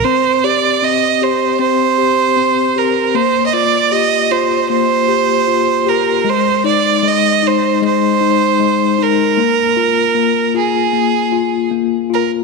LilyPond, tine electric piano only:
\new Staff \with { instrumentName = "Tine electric piano" } { \time 4/4 \key c \minor \tempo 4 = 77 c'8 g'8 c'8 g'8 c'8 g'8 c'8 g'8 | bes8 f'8 g'8 f'8 bes8 g'8 f'8 g'8 | aes8 ees'8 aes8 ees'8 aes8 ees'8 aes8 ees'8 | bes8 f'8 bes8 f'8 bes8 f'8 bes8 f'8 | }